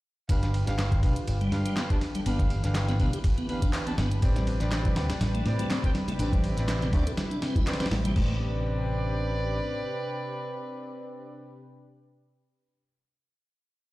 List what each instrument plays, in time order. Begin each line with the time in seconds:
0.29 picked electric bass G1, analog synth pad D3 F4 G4 B4, horn section D4 G4 B4 F5, kick, closed hi-hat, ride
0.43 snare, closed hi-hat
0.54 ride
0.67 picked electric bass G1, horn section D4 G4 B4 F5, snare, closed hi-hat
0.79 snare, clap, closed hi-hat, ride
0.92 kick, closed hi-hat
1.03 picked electric bass B1, horn section D4 G4 B4 F5, kick, ride
1.16 closed hi-hat
1.27 picked electric bass G1, closed hi-hat, ride
1.41 tonewheel organ G3, closed hi-hat
1.52 picked electric bass G2, horn section D4 G4 B4 F5, snare, ride
1.66 tonewheel organ G3, closed hi-hat
1.77 tonewheel organ B3, snare, clap, closed hi-hat, ride
1.90 horn section D4 G4 B4 A5, kick, closed hi-hat
2.01 snare, ride
2.15 tonewheel organ G3, closed hi-hat, ride
2.26 picked electric bass G1, analog synth pad E3, tonewheel organ B3, horn section D4 G4 B4 F5, closed hi-hat, ride
2.39 kick, closed hi-hat
2.50 ride
2.64 picked electric bass G1, horn section D4 G4 B4 F5, snare, closed hi-hat
2.75 snare, clap, closed hi-hat, ride
2.88 tonewheel organ B3, snare, closed hi-hat
3.00 picked electric bass B1, tonewheel organ B3, horn section D4 G4 B4 F5, kick, ride
3.13 tonewheel organ G4, closed hi-hat
3.24 kick, closed hi-hat, ride
3.38 tonewheel organ B3, closed hi-hat
3.49 tonewheel organ B3, horn section D4 G4 B4 F5, ride
3.62 tonewheel organ D4, kick, closed hi-hat
3.73 clap, closed hi-hat, ride
3.87 tonewheel organ B3, horn section D4 G4 B4 A5, closed hi-hat, ride
3.98 picked electric bass G1, tonewheel organ B3, snare, ride
4.11 closed hi-hat
4.22 picked electric bass A1, analog synth pad C3 D4 G4, horn section C4 G4 B4 D5, kick, closed hi-hat, ride
4.36 snare, closed hi-hat, high conga
4.47 ride
4.60 picked electric bass A1, horn section C4 G4 B4 D5, snare, closed hi-hat
4.71 snare, clap, closed hi-hat, ride
4.85 kick, closed hi-hat, high conga, low conga
4.96 picked electric bass D2, horn section C4 G4 B4 D5, snare, ride
5.10 snare, closed hi-hat, ride
5.21 picked electric bass A1, snare, closed hi-hat, ride, high conga
5.34 tonewheel organ A3, closed hi-hat
5.46 picked electric bass A2, horn section C4 G4 B4 D5, snare, ride
5.59 tonewheel organ A3, closed hi-hat, high conga, low conga
5.70 tonewheel organ C4, snare, clap, closed hi-hat, ride
5.84 horn section C4 G4 B4 G5, kick, closed hi-hat
5.95 snare, ride, high conga
6.08 tonewheel organ A3, closed hi-hat, ride, low conga
6.19 picked electric bass A1, horn section C4 G4 B4 D5, tonewheel organ D4, analog synth pad E4, closed hi-hat, ride
6.33 kick, closed hi-hat, high conga
6.44 ride
6.57 picked electric bass A1, horn section C4 G4 B4 D5, snare, closed hi-hat
6.68 snare, clap, closed hi-hat, ride
6.81 tonewheel organ C4, snare, closed hi-hat, high conga, low conga
6.93 picked electric bass D2, horn section C4 G4 B4 D5, tonewheel organ D4, kick, ride
7.07 tonewheel organ A4, closed hi-hat
7.17 snare, closed hi-hat, ride, high conga
7.31 tonewheel organ D4, closed hi-hat
7.42 tonewheel organ C4, snare, ride
7.55 tonewheel organ E4, kick, closed hi-hat, high conga, low conga
7.67 horn section C4 G4 B4 D5, snare, clap, closed hi-hat, ride
7.73 snare, ride
7.80 tonewheel organ C4, horn section C4 G4 B4 D5, snare, closed hi-hat, ride
7.86 snare, ride
7.91 picked electric bass A1, tonewheel organ A3, snare, ride, high conga
8.04 tonewheel organ G3, closed hi-hat, low conga
8.16 picked electric bass A1, analog synth pad C3 D4 G4 B4, tonewheel organ A3, horn section C4 G4 B4 D5, kick, crash